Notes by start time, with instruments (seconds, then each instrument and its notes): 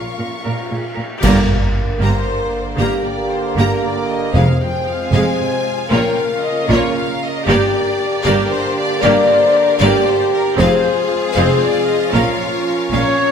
Already playing: french horn section F3 C#4, string section C#4 F4 A#4 F5, violin section F5 C#6
0.18 cello section A#2, viola section A#4
0.42 cello section A#2, french horn section F4, viola section A#4
0.69 cello section A#2, viola section G#4
0.96 cello section A#2, viola section A#4
1.21 double bass section G1, cello section G2, trombone section D3 A#3, viola section A#3 G4, string section D4 G4 A#4 D5, french horn section A#4, violin section A#5, concert bass drum, crash
1.99 double bass section G1, cello section G2, viola section A#3 G4, violin section C5 A#5
2.77 double bass section G1, cello section G2, viola section A#3 G4, french horn section G4, violin section A#4 A#5
3.06 violin section D5
3.32 violin section C5
3.56 double bass section G1, cello section G2, viola section A#3 G4, french horn section G4, violin section A#4 A#5
3.83 violin section D5
4.09 violin section D#5
4.33 double bass section F1, timpani F2, cello section F2, trombone section C3 G#3, viola section G#3 G#4, string section C4 F4 G#4 F5, french horn section C5, violin section F5
4.61 violin section G5
4.87 violin section F5
5.12 double bass section F1, cello section F2, viola section G#3 G#4, violin section F5 G#5
5.89 double bass section A#1, cello section A#2, trombone section C#3 A#3, viola section A#3 F4, string section C#4 A#4, french horn section A#4, violin section C#5 G5
6.18 violin section F5
6.42 violin section D#5
6.67 double bass section A#1, cello section A#2, viola section A#3 F4, french horn section F4, violin section C#5
6.95 violin section F5
7.23 violin section D#5
7.45 double bass section G1, cello section G2, trombone section D3 A#3, viola section A#3 G4, string section D4 G4 D5, french horn section G4, violin section D5
7.49 violin section D5
8.23 double bass section G1, cello section G2, viola section A#3 G4, french horn section G4, violin section A#4 D5
8.51 violin section C5
8.78 violin section D5
9.02 double bass section G1, cello section G2, viola section A#3 G4, violin section A#4 D5, french horn section D5
9.30 violin section C5
9.55 violin section A#4
9.78 double bass section G1, cello section G2, viola section A#3 G4, french horn section G4, violin section D5
10.07 violin section C5
10.33 violin section A#4
10.57 double bass section F1, cello section F2, trombone section F3 G#3, string section C4 F4 G#4 F5, viola section C4 G#4, violin section G#4 F5, french horn section C5
11.34 double bass section F1, cello section F2, viola section C4 G#4, french horn section G#4, violin section C5 F5
11.62 violin section D5
11.86 violin section D#5
12.11 double bass section A#1, cello section A#2, string section C#4 A#4, viola section C#4 A#4, trombone section C#4, french horn section F4, violin section C#5 F5
12.90 double bass section A#1, cello section A#2, viola section C#4, french horn section C#4, flute C#5, trumpet C#5, violin section C#5 F5
13.16 viola section C4